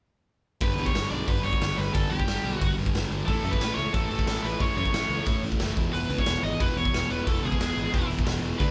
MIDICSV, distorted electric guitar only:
0, 0, Header, 1, 2, 480
1, 0, Start_track
1, 0, Tempo, 332779
1, 878, Time_signature, 4, 2, 24, 8
1, 12562, End_track
2, 0, Start_track
2, 0, Title_t, "Distorted electric guitar"
2, 0, Program_c, 0, 30
2, 880, Note_on_c, 0, 43, 83
2, 890, Note_on_c, 0, 50, 93
2, 893, Note_on_c, 0, 55, 93
2, 1107, Note_off_c, 0, 50, 0
2, 1109, Note_off_c, 0, 55, 0
2, 1114, Note_on_c, 0, 55, 85
2, 1124, Note_on_c, 0, 50, 80
2, 1127, Note_off_c, 0, 43, 0
2, 1133, Note_on_c, 0, 43, 72
2, 1349, Note_off_c, 0, 50, 0
2, 1350, Note_off_c, 0, 43, 0
2, 1356, Note_on_c, 0, 43, 73
2, 1365, Note_off_c, 0, 55, 0
2, 1366, Note_on_c, 0, 50, 78
2, 1371, Note_on_c, 0, 55, 83
2, 1591, Note_off_c, 0, 50, 0
2, 1599, Note_off_c, 0, 55, 0
2, 1605, Note_on_c, 0, 55, 88
2, 1608, Note_on_c, 0, 50, 76
2, 1618, Note_off_c, 0, 43, 0
2, 1624, Note_on_c, 0, 43, 67
2, 1820, Note_off_c, 0, 43, 0
2, 1825, Note_off_c, 0, 50, 0
2, 1832, Note_off_c, 0, 55, 0
2, 1837, Note_on_c, 0, 43, 85
2, 1843, Note_on_c, 0, 50, 90
2, 1850, Note_on_c, 0, 55, 89
2, 2056, Note_off_c, 0, 55, 0
2, 2068, Note_off_c, 0, 50, 0
2, 2073, Note_on_c, 0, 55, 77
2, 2076, Note_off_c, 0, 43, 0
2, 2085, Note_on_c, 0, 50, 72
2, 2094, Note_on_c, 0, 43, 69
2, 2297, Note_off_c, 0, 43, 0
2, 2303, Note_off_c, 0, 50, 0
2, 2314, Note_on_c, 0, 43, 70
2, 2315, Note_off_c, 0, 55, 0
2, 2320, Note_on_c, 0, 50, 72
2, 2333, Note_on_c, 0, 55, 78
2, 2526, Note_off_c, 0, 55, 0
2, 2538, Note_off_c, 0, 50, 0
2, 2543, Note_on_c, 0, 55, 80
2, 2549, Note_off_c, 0, 43, 0
2, 2556, Note_on_c, 0, 50, 74
2, 2566, Note_on_c, 0, 43, 70
2, 2776, Note_off_c, 0, 43, 0
2, 2783, Note_off_c, 0, 50, 0
2, 2786, Note_off_c, 0, 55, 0
2, 2793, Note_on_c, 0, 43, 95
2, 2800, Note_on_c, 0, 50, 86
2, 2804, Note_on_c, 0, 55, 98
2, 3022, Note_off_c, 0, 55, 0
2, 3029, Note_off_c, 0, 50, 0
2, 3038, Note_off_c, 0, 43, 0
2, 3039, Note_on_c, 0, 55, 82
2, 3046, Note_on_c, 0, 50, 81
2, 3056, Note_on_c, 0, 43, 62
2, 3269, Note_off_c, 0, 43, 0
2, 3271, Note_off_c, 0, 50, 0
2, 3283, Note_off_c, 0, 55, 0
2, 3286, Note_on_c, 0, 43, 75
2, 3289, Note_on_c, 0, 50, 73
2, 3301, Note_on_c, 0, 55, 86
2, 3512, Note_off_c, 0, 55, 0
2, 3519, Note_off_c, 0, 50, 0
2, 3522, Note_off_c, 0, 43, 0
2, 3530, Note_on_c, 0, 55, 83
2, 3537, Note_on_c, 0, 50, 76
2, 3540, Note_on_c, 0, 43, 71
2, 3741, Note_off_c, 0, 43, 0
2, 3755, Note_off_c, 0, 50, 0
2, 3758, Note_on_c, 0, 43, 96
2, 3762, Note_off_c, 0, 55, 0
2, 3772, Note_on_c, 0, 50, 95
2, 3779, Note_on_c, 0, 55, 95
2, 3991, Note_off_c, 0, 55, 0
2, 3996, Note_off_c, 0, 50, 0
2, 4006, Note_off_c, 0, 43, 0
2, 4009, Note_on_c, 0, 55, 80
2, 4014, Note_on_c, 0, 50, 70
2, 4023, Note_on_c, 0, 43, 70
2, 4238, Note_off_c, 0, 43, 0
2, 4243, Note_off_c, 0, 50, 0
2, 4253, Note_off_c, 0, 55, 0
2, 4255, Note_on_c, 0, 43, 71
2, 4260, Note_on_c, 0, 50, 77
2, 4270, Note_on_c, 0, 55, 81
2, 4472, Note_off_c, 0, 55, 0
2, 4480, Note_off_c, 0, 50, 0
2, 4483, Note_off_c, 0, 43, 0
2, 4490, Note_on_c, 0, 55, 87
2, 4497, Note_on_c, 0, 50, 79
2, 4500, Note_on_c, 0, 43, 69
2, 4710, Note_off_c, 0, 55, 0
2, 4714, Note_off_c, 0, 50, 0
2, 4715, Note_off_c, 0, 43, 0
2, 4731, Note_on_c, 0, 45, 86
2, 4732, Note_on_c, 0, 52, 87
2, 4740, Note_on_c, 0, 57, 106
2, 4965, Note_off_c, 0, 57, 0
2, 4971, Note_on_c, 0, 57, 82
2, 4976, Note_off_c, 0, 52, 0
2, 4982, Note_off_c, 0, 45, 0
2, 4982, Note_on_c, 0, 52, 78
2, 4988, Note_on_c, 0, 45, 75
2, 5203, Note_off_c, 0, 45, 0
2, 5209, Note_on_c, 0, 45, 71
2, 5219, Note_off_c, 0, 52, 0
2, 5224, Note_off_c, 0, 57, 0
2, 5225, Note_on_c, 0, 52, 75
2, 5230, Note_on_c, 0, 57, 83
2, 5426, Note_off_c, 0, 57, 0
2, 5435, Note_off_c, 0, 45, 0
2, 5443, Note_off_c, 0, 52, 0
2, 5443, Note_on_c, 0, 57, 92
2, 5449, Note_on_c, 0, 52, 73
2, 5453, Note_on_c, 0, 45, 62
2, 5662, Note_off_c, 0, 45, 0
2, 5678, Note_off_c, 0, 52, 0
2, 5679, Note_on_c, 0, 45, 90
2, 5683, Note_off_c, 0, 57, 0
2, 5684, Note_on_c, 0, 52, 92
2, 5700, Note_on_c, 0, 57, 99
2, 5897, Note_off_c, 0, 57, 0
2, 5912, Note_off_c, 0, 45, 0
2, 5915, Note_on_c, 0, 57, 77
2, 5921, Note_off_c, 0, 52, 0
2, 5927, Note_on_c, 0, 52, 72
2, 5929, Note_on_c, 0, 45, 75
2, 6147, Note_off_c, 0, 45, 0
2, 6158, Note_off_c, 0, 57, 0
2, 6162, Note_off_c, 0, 52, 0
2, 6164, Note_on_c, 0, 45, 67
2, 6168, Note_on_c, 0, 52, 80
2, 6176, Note_on_c, 0, 57, 85
2, 6372, Note_off_c, 0, 57, 0
2, 6390, Note_off_c, 0, 45, 0
2, 6390, Note_on_c, 0, 57, 81
2, 6397, Note_off_c, 0, 52, 0
2, 6403, Note_on_c, 0, 52, 68
2, 6407, Note_on_c, 0, 45, 64
2, 6611, Note_off_c, 0, 45, 0
2, 6628, Note_off_c, 0, 57, 0
2, 6628, Note_on_c, 0, 45, 83
2, 6634, Note_off_c, 0, 52, 0
2, 6640, Note_on_c, 0, 52, 92
2, 6646, Note_on_c, 0, 57, 96
2, 6850, Note_off_c, 0, 57, 0
2, 6862, Note_off_c, 0, 52, 0
2, 6866, Note_off_c, 0, 45, 0
2, 6867, Note_on_c, 0, 57, 92
2, 6868, Note_on_c, 0, 52, 75
2, 6884, Note_on_c, 0, 45, 66
2, 7077, Note_off_c, 0, 45, 0
2, 7095, Note_on_c, 0, 45, 74
2, 7098, Note_off_c, 0, 52, 0
2, 7101, Note_off_c, 0, 57, 0
2, 7104, Note_on_c, 0, 52, 85
2, 7118, Note_on_c, 0, 57, 80
2, 7340, Note_off_c, 0, 57, 0
2, 7353, Note_off_c, 0, 52, 0
2, 7356, Note_off_c, 0, 45, 0
2, 7357, Note_on_c, 0, 57, 85
2, 7359, Note_on_c, 0, 52, 75
2, 7373, Note_on_c, 0, 45, 66
2, 7573, Note_off_c, 0, 45, 0
2, 7590, Note_on_c, 0, 45, 91
2, 7593, Note_off_c, 0, 57, 0
2, 7599, Note_off_c, 0, 52, 0
2, 7605, Note_on_c, 0, 52, 86
2, 7611, Note_on_c, 0, 57, 88
2, 7828, Note_off_c, 0, 57, 0
2, 7845, Note_off_c, 0, 52, 0
2, 7845, Note_on_c, 0, 57, 85
2, 7847, Note_off_c, 0, 45, 0
2, 7851, Note_on_c, 0, 52, 77
2, 7864, Note_on_c, 0, 45, 60
2, 8063, Note_off_c, 0, 45, 0
2, 8078, Note_off_c, 0, 57, 0
2, 8080, Note_on_c, 0, 45, 76
2, 8085, Note_off_c, 0, 52, 0
2, 8091, Note_on_c, 0, 52, 74
2, 8095, Note_on_c, 0, 57, 77
2, 8305, Note_off_c, 0, 45, 0
2, 8313, Note_off_c, 0, 57, 0
2, 8324, Note_on_c, 0, 40, 75
2, 8327, Note_on_c, 0, 47, 80
2, 8333, Note_off_c, 0, 52, 0
2, 8339, Note_on_c, 0, 52, 93
2, 8563, Note_off_c, 0, 47, 0
2, 8564, Note_off_c, 0, 52, 0
2, 8569, Note_on_c, 0, 52, 100
2, 8580, Note_on_c, 0, 47, 97
2, 8584, Note_off_c, 0, 40, 0
2, 8590, Note_on_c, 0, 40, 81
2, 8792, Note_off_c, 0, 47, 0
2, 8797, Note_off_c, 0, 40, 0
2, 8803, Note_on_c, 0, 40, 83
2, 8810, Note_off_c, 0, 52, 0
2, 8810, Note_on_c, 0, 47, 78
2, 8816, Note_on_c, 0, 52, 93
2, 9039, Note_off_c, 0, 47, 0
2, 9043, Note_off_c, 0, 52, 0
2, 9049, Note_on_c, 0, 52, 86
2, 9050, Note_off_c, 0, 40, 0
2, 9055, Note_on_c, 0, 40, 69
2, 9057, Note_on_c, 0, 47, 71
2, 9259, Note_off_c, 0, 47, 0
2, 9272, Note_off_c, 0, 40, 0
2, 9277, Note_on_c, 0, 47, 78
2, 9278, Note_on_c, 0, 40, 75
2, 9289, Note_off_c, 0, 52, 0
2, 9295, Note_on_c, 0, 52, 82
2, 9504, Note_off_c, 0, 52, 0
2, 9509, Note_off_c, 0, 47, 0
2, 9517, Note_off_c, 0, 40, 0
2, 9521, Note_on_c, 0, 52, 100
2, 9526, Note_on_c, 0, 47, 87
2, 9534, Note_on_c, 0, 40, 79
2, 9751, Note_off_c, 0, 40, 0
2, 9762, Note_off_c, 0, 47, 0
2, 9767, Note_off_c, 0, 52, 0
2, 9769, Note_on_c, 0, 40, 72
2, 9779, Note_on_c, 0, 47, 79
2, 9784, Note_on_c, 0, 52, 79
2, 9985, Note_off_c, 0, 52, 0
2, 9994, Note_off_c, 0, 47, 0
2, 10002, Note_on_c, 0, 52, 76
2, 10005, Note_off_c, 0, 40, 0
2, 10011, Note_on_c, 0, 47, 75
2, 10022, Note_on_c, 0, 40, 62
2, 10215, Note_off_c, 0, 40, 0
2, 10221, Note_off_c, 0, 47, 0
2, 10228, Note_off_c, 0, 52, 0
2, 10232, Note_on_c, 0, 40, 71
2, 10238, Note_on_c, 0, 47, 72
2, 10245, Note_on_c, 0, 52, 81
2, 10464, Note_off_c, 0, 52, 0
2, 10475, Note_off_c, 0, 47, 0
2, 10478, Note_off_c, 0, 40, 0
2, 10481, Note_on_c, 0, 52, 99
2, 10492, Note_on_c, 0, 47, 85
2, 10495, Note_on_c, 0, 40, 81
2, 10686, Note_off_c, 0, 40, 0
2, 10699, Note_off_c, 0, 47, 0
2, 10703, Note_on_c, 0, 40, 72
2, 10709, Note_off_c, 0, 52, 0
2, 10716, Note_on_c, 0, 47, 82
2, 10727, Note_on_c, 0, 52, 84
2, 10933, Note_off_c, 0, 52, 0
2, 10946, Note_off_c, 0, 47, 0
2, 10950, Note_on_c, 0, 52, 77
2, 10952, Note_off_c, 0, 40, 0
2, 10963, Note_on_c, 0, 47, 70
2, 10970, Note_on_c, 0, 40, 68
2, 11180, Note_off_c, 0, 40, 0
2, 11190, Note_off_c, 0, 47, 0
2, 11197, Note_on_c, 0, 40, 73
2, 11199, Note_off_c, 0, 52, 0
2, 11208, Note_on_c, 0, 47, 83
2, 11217, Note_on_c, 0, 52, 88
2, 11422, Note_off_c, 0, 52, 0
2, 11433, Note_off_c, 0, 47, 0
2, 11440, Note_on_c, 0, 52, 101
2, 11443, Note_off_c, 0, 40, 0
2, 11451, Note_on_c, 0, 47, 90
2, 11460, Note_on_c, 0, 40, 77
2, 11659, Note_off_c, 0, 40, 0
2, 11668, Note_off_c, 0, 47, 0
2, 11671, Note_off_c, 0, 52, 0
2, 11676, Note_on_c, 0, 40, 74
2, 11685, Note_on_c, 0, 47, 86
2, 11688, Note_on_c, 0, 52, 82
2, 11891, Note_off_c, 0, 52, 0
2, 11901, Note_off_c, 0, 47, 0
2, 11909, Note_off_c, 0, 40, 0
2, 11909, Note_on_c, 0, 52, 79
2, 11918, Note_on_c, 0, 47, 77
2, 11926, Note_on_c, 0, 40, 68
2, 12136, Note_off_c, 0, 40, 0
2, 12146, Note_off_c, 0, 47, 0
2, 12153, Note_on_c, 0, 40, 73
2, 12157, Note_off_c, 0, 52, 0
2, 12164, Note_on_c, 0, 47, 80
2, 12174, Note_on_c, 0, 52, 86
2, 12382, Note_off_c, 0, 40, 0
2, 12387, Note_off_c, 0, 47, 0
2, 12392, Note_off_c, 0, 52, 0
2, 12397, Note_on_c, 0, 50, 86
2, 12413, Note_on_c, 0, 57, 94
2, 12419, Note_on_c, 0, 62, 101
2, 12562, Note_off_c, 0, 50, 0
2, 12562, Note_off_c, 0, 57, 0
2, 12562, Note_off_c, 0, 62, 0
2, 12562, End_track
0, 0, End_of_file